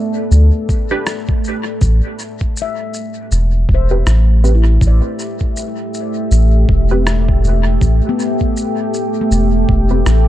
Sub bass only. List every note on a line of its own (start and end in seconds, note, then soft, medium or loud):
0.31 0.51 D2 loud
1.81 2.01 A1 loud
3.31 3.65 E1 medium
3.69 4.03 E1 medium
4.06 4.78 A1 medium
4.81 5.01 A1 loud
6.31 6.65 A1 loud
6.69 7.41 E1 loud
7.44 7.78 E1 loud
7.81 8.01 A1 loud
9.31 9.65 E1 medium
9.69 10.03 E1 medium
10.06 10.28 A1 loud